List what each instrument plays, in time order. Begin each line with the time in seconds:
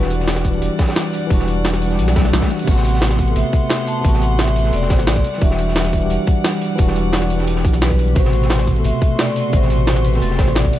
Already playing: sub bass E1, tine electric piano E3 G3 D4 F#4, string section G3 D5 F#5
0.01 snare
0.10 closed hi-hat
0.20 snare
0.28 snare, closed hi-hat
0.36 snare
0.45 kick, closed hi-hat
0.50 tine electric piano E3 G3, closed hi-hat
0.55 tine electric piano D4 G4
0.62 sub bass E1, closed hi-hat
0.79 kick, snare, closed hi-hat
0.87 snare, closed hi-hat
0.96 snare, closed hi-hat
1.13 closed hi-hat
1.27 sub bass E1, tine electric piano E3 G3, kick, closed hi-hat
1.32 tine electric piano D4 F#4
1.39 snare
1.48 closed hi-hat
1.65 snare, closed hi-hat
1.74 snare
1.82 closed hi-hat
1.87 tine electric piano E3 G3, snare, closed hi-hat
1.92 tine electric piano D4 G4
1.99 sub bass B1, closed hi-hat, swell
2.08 snare
2.16 kick, snare, closed hi-hat
2.25 snare
2.33 sub bass B1, snare, closed hi-hat
2.42 kick, snare, closed hi-hat
2.51 closed hi-hat
2.59 closed hi-hat
2.64 sub bass A1, tine electric piano C3 A3, string section B3 C6, kick, closed hi-hat, crash
2.68 tine electric piano B3 F#4, vibraphone F#5, closed hi-hat
2.76 snare
2.85 closed hi-hat
2.93 snare
3.01 snare, closed hi-hat
3.11 snare
3.19 kick, closed hi-hat
3.24 tine electric piano C3 A3, closed hi-hat
3.29 tine electric piano B3 A4
3.36 sub bass A1, vibraphone E5, closed hi-hat
3.53 kick, closed hi-hat
3.70 snare, closed hi-hat
3.87 vibraphone A5, closed hi-hat
4.01 sub bass A1, tine electric piano C3 A3, kick, closed hi-hat
4.06 tine electric piano B3 F#4
4.14 snare
4.22 vibraphone F#5, closed hi-hat
4.39 vibraphone E5, snare, closed hi-hat
4.48 snare
4.56 vibraphone E5, closed hi-hat
4.61 tine electric piano C3 A3, snare, closed hi-hat
4.66 tine electric piano B3 A4
4.73 sub bass E1, vibraphone D5, closed hi-hat
4.82 snare
4.90 sub bass A1, vibraphone C5, kick, snare, closed hi-hat
4.99 snare, closed hi-hat
5.07 vibraphone D5, snare, closed hi-hat
5.16 kick, snare
5.24 string section G3 D5, closed hi-hat
5.33 snare
5.38 sub bass E1, tine electric piano E3 G3, kick, closed hi-hat
5.42 tine electric piano D4 F#4, vibraphone E5
5.50 snare
5.59 closed hi-hat
5.68 snare
5.75 snare, closed hi-hat
5.85 snare
5.93 kick, closed hi-hat
5.98 tine electric piano E3 G3, closed hi-hat
6.03 tine electric piano D4 G4
6.10 sub bass E1, vibraphone F#5, closed hi-hat
6.27 kick, closed hi-hat
6.44 snare, closed hi-hat
6.61 closed hi-hat
6.75 sub bass E1, tine electric piano E3 G3, kick, closed hi-hat
6.80 tine electric piano D4 F#4
6.87 snare
6.96 closed hi-hat
7.13 snare, closed hi-hat
7.22 snare
7.30 closed hi-hat
7.35 tine electric piano E3 G3, snare, closed hi-hat
7.40 tine electric piano D4 G4
7.47 closed hi-hat
7.56 snare
7.65 sub bass B1, kick, closed hi-hat
7.73 snare, closed hi-hat
7.81 vibraphone B4, snare, closed hi-hat
7.90 kick, snare
7.99 closed hi-hat
8.08 closed hi-hat
8.12 sub bass A1, tine electric piano C3 A3, string section A3 F#4 C6, vibraphone C5, kick, closed hi-hat
8.17 tine electric piano B2 F#4
8.25 snare
8.32 closed hi-hat
8.42 snare
8.50 snare, closed hi-hat
8.59 snare
8.67 kick, closed hi-hat
8.72 tine electric piano C3 A3, closed hi-hat
8.77 tine electric piano B3 A4
8.85 sub bass A1, vibraphone E5, closed hi-hat
9.01 kick, closed hi-hat
9.19 vibraphone D5, snare, closed hi-hat
9.36 closed hi-hat
9.50 sub bass A1, tine electric piano C3 A3, vibraphone C5, kick, closed hi-hat
9.55 tine electric piano B2 F#4
9.62 snare
9.70 closed hi-hat
9.87 vibraphone C5, snare, closed hi-hat
9.96 snare
10.04 vibraphone B4, closed hi-hat
10.10 tine electric piano C3 A3, snare, closed hi-hat
10.15 tine electric piano B3 A4
10.22 sub bass E1, vibraphone A4, closed hi-hat
10.30 snare
10.38 sub bass A1, vibraphone C5, kick, snare, closed hi-hat
10.48 snare, closed hi-hat
10.55 vibraphone D5, snare, closed hi-hat
10.65 kick, snare
10.73 string section G3 D5 F#5, closed hi-hat